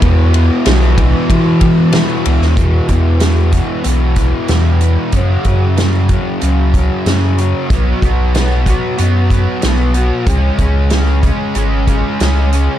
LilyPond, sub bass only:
\new Staff \with { instrumentName = "Sub bass" } { \clef bass \time 4/4 \key e \major \tempo 4 = 94 e,4 b,,4 e4. cis,16 dis,16 | e,8 e,4. b,,4 e,4 | fis,8 fis,4. cis,4 fis,4 | b,,8 b,,4. fis,4 b,,4 |
cis,8 cis,4. gis,,4 cis,4 | }